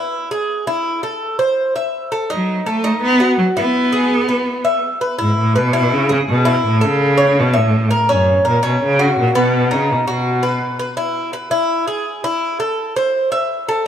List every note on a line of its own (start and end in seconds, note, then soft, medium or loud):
0.00 0.30 E4 medium
0.31 0.66 G#4 medium
0.67 1.02 E4 medium
1.03 1.38 A4 medium
1.39 1.74 C5 medium
1.76 2.11 E5 medium
2.12 2.29 A4 medium
2.30 2.65 F#3 medium
2.30 2.65 D#4 medium
2.66 3.00 A3 medium
2.66 2.84 A4 medium
2.84 3.19 D#4 medium
3.03 3.36 B3 loud
3.20 3.55 F#4 medium
3.39 3.47 F#3 medium
3.57 4.79 B3 medium
3.57 3.92 E4 medium
3.92 4.28 G#4 medium
4.29 4.64 B4 medium
4.65 5.00 E5 medium
5.01 5.18 B4 medium
5.19 5.37 G#2 medium
5.19 5.54 E4 medium
5.38 5.59 A2 medium
5.56 5.95 B2 medium
5.56 5.73 B4 medium
5.73 6.09 E4 medium
5.93 6.11 C#3 loud
6.09 6.20 C#3 medium
6.09 6.45 G#4 medium
6.29 6.62 B2 medium
6.45 6.81 E4 medium
6.67 6.87 A2 medium
6.81 7.41 C#3 loud
6.81 7.17 A4 medium
7.17 7.53 C#5 medium
7.40 7.59 B2 loud
7.53 7.92 A2 loud
7.53 7.89 E5 medium
7.91 8.08 A#4 medium
8.09 8.44 F#2 medium
8.09 8.44 C#4 medium
8.45 8.63 A#2 medium
8.45 8.62 A#4 medium
8.63 8.81 B2 medium
8.63 8.98 C#4 medium
8.83 9.16 C#3 medium
8.99 9.34 F#4 medium
9.19 9.35 A#2 medium
9.35 9.74 B2 medium
9.35 9.70 B3 medium
9.71 9.93 C#3 medium
9.71 10.06 D#4 medium
9.92 10.08 B2 medium
10.07 10.76 B2 medium
10.07 10.43 F#4 medium
10.43 10.78 B4 medium
10.79 10.96 B4 medium
10.97 11.32 E4 medium
11.33 11.51 B4 medium
11.51 11.87 E4 medium
11.88 12.23 G#4 medium
12.24 12.59 E4 medium
12.60 12.95 A4 medium
12.96 13.31 C5 medium
13.32 13.67 E5 medium
13.69 13.86 A4 medium